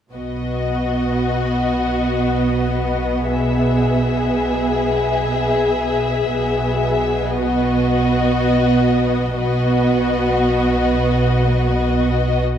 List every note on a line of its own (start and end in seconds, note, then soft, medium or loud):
0.13 6.28 B1 soft
0.13 6.28 B2 soft
0.13 6.28 B3 soft
0.13 3.27 F#4 soft
0.13 3.26 D#5 soft
3.31 7.33 G#4 soft
3.31 7.28 E5 soft
6.32 9.35 B1 soft
6.32 9.34 B2 soft
6.32 9.34 B3 soft
7.33 9.38 F#4 soft
7.33 9.37 D#5 soft
9.37 12.42 B1 soft
9.37 12.42 B2 soft
9.37 12.42 B3 soft
9.37 12.42 F#4 soft
9.37 12.42 D#5 soft